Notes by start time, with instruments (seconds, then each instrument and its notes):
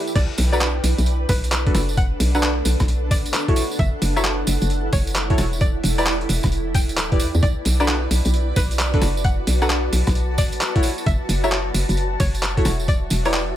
Already playing: ambient pad E4 B4 D5
0.07 tambourine
0.15 fm bass B1, ambient pad D4, synth pluck D5, kick, closed hi-hat, crash, tambourine
0.25 ambient pad A4
0.38 fm bass B1, open hi-hat, tambourine
0.52 synth stab D4 F#4 A4 B4, synth pluck D5, tambourine, high woodblock
0.61 clap, tambourine
0.84 fm bass B1, open hi-hat, tambourine
0.98 fm bass B1, closed hi-hat, tambourine
1.06 closed hi-hat, tambourine
1.29 fm bass B1, synth pluck B4, kick, open hi-hat, tambourine
1.44 closed hi-hat, tambourine
1.51 clap, tambourine
1.67 synth stab D4 F#4 A4 B4, kick, closed hi-hat
1.71 fm bass F#1, ambient pad F#5, cross-stick, open hi-hat, tambourine
1.89 tambourine
1.97 synth pluck F#5, kick, closed hi-hat, tambourine
2.20 fm bass B1, open hi-hat, tambourine
2.35 synth stab D4 F#4 A4 B4, synth pluck F#5, tambourine, high woodblock
2.43 clap, tambourine
2.65 fm bass B1, open hi-hat, tambourine
2.80 fm bass B1, kick, cross-stick, closed hi-hat, tambourine
2.88 closed hi-hat, tambourine
3.11 synth pluck D5, kick, open hi-hat, tambourine
3.26 fm bass A1, closed hi-hat, tambourine
3.33 clap, tambourine
3.48 synth stab E4 F#4 A4 C#5, kick, closed hi-hat
3.56 ambient pad E4, open hi-hat, tambourine
3.72 tambourine
3.79 fm bass F#1, synth pluck E5, kick, closed hi-hat
4.02 fm bass F#1, open hi-hat, tambourine
4.16 synth stab E4 F#4 A4 C#5, synth pluck E5, tambourine, high woodblock
4.24 clap, tambourine
4.47 fm bass F#1, open hi-hat, tambourine
4.62 fm bass F#1, closed hi-hat, tambourine
4.70 closed hi-hat, tambourine
4.93 fm bass F#1, synth pluck C#5, kick, open hi-hat, tambourine
5.07 closed hi-hat, tambourine
5.14 clap, tambourine
5.30 synth stab E4 F#4 A4 C#5, kick, closed hi-hat
5.38 fm bass E1, cross-stick, open hi-hat, tambourine
5.53 tambourine
5.61 synth pluck D5, kick, closed hi-hat, tambourine
5.84 fm bass E1, open hi-hat, tambourine
5.98 synth stab E4 G4 B4 D5, synth pluck D5, open hi-hat, tambourine, high woodblock
6.04 ambient pad D5, clap, tambourine
6.21 ambient pad B4, closed hi-hat
6.29 fm bass E1, open hi-hat, tambourine
6.43 fm bass E1, kick, cross-stick, closed hi-hat, tambourine
6.52 closed hi-hat, tambourine
6.75 synth pluck G5, kick, open hi-hat, tambourine
6.89 fm bass D1, closed hi-hat, tambourine
6.97 clap, tambourine
7.12 fm bass E1, synth stab E4 G4 B4 D5, kick, closed hi-hat
7.20 fm bass E2, open hi-hat, tambourine
7.35 fm bass E2, tambourine
7.43 fm bass B1, ambient pad F#4, synth pluck D5, kick, closed hi-hat, tambourine
7.65 fm bass B1, open hi-hat, tambourine
7.80 synth stab D4 F#4 A4 B4, synth pluck D5, tambourine, high woodblock
7.88 clap, tambourine
8.11 fm bass B1, open hi-hat, tambourine
8.25 fm bass B1, closed hi-hat, tambourine
8.34 ambient pad A5, closed hi-hat, tambourine
8.56 fm bass B1, synth pluck B4, kick, open hi-hat, tambourine
8.71 closed hi-hat, tambourine
8.79 clap, tambourine
8.94 synth stab D4 F#4 A4 B4, kick, closed hi-hat
9.02 fm bass F#1, cross-stick, open hi-hat, tambourine
9.17 tambourine
9.24 synth pluck F#5, kick, closed hi-hat, tambourine
9.47 fm bass B1, open hi-hat, tambourine
9.62 synth stab D4 F#4 A4 B4, synth pluck F#5, tambourine, high woodblock
9.70 clap, tambourine
9.93 fm bass B1, open hi-hat, tambourine
10.07 fm bass B1, kick, cross-stick, closed hi-hat, tambourine
10.15 closed hi-hat, tambourine
10.38 synth pluck D5, kick, open hi-hat, tambourine
10.52 fm bass A1, closed hi-hat, tambourine
10.61 clap, tambourine
10.75 synth stab E4 F#4 A4 C#5, kick, closed hi-hat
10.83 open hi-hat, tambourine
10.98 tambourine
11.06 fm bass F#1, synth pluck E5, kick, closed hi-hat, tambourine
11.29 fm bass F#1, open hi-hat, tambourine
11.44 synth stab E4 F#4 A4 C#5, synth pluck E5, tambourine, high woodblock
11.51 ambient pad E5, clap, tambourine
11.74 fm bass F#1, open hi-hat, tambourine
11.89 fm bass F#1, closed hi-hat, tambourine
11.97 closed hi-hat, tambourine
12.20 fm bass F#1, synth pluck C#5, kick, open hi-hat, tambourine
12.35 closed hi-hat, tambourine
12.43 clap, tambourine
12.57 synth stab E4 F#4 A4 C#5, kick, closed hi-hat
12.65 fm bass E1, cross-stick, open hi-hat, tambourine
12.80 tambourine
12.88 ambient pad G4, synth pluck D5, kick, closed hi-hat, tambourine
13.10 fm bass E1, open hi-hat, tambourine
13.25 synth stab E4 G4 B4 D5, synth pluck C#5, open hi-hat, tambourine, high woodblock
13.33 clap, tambourine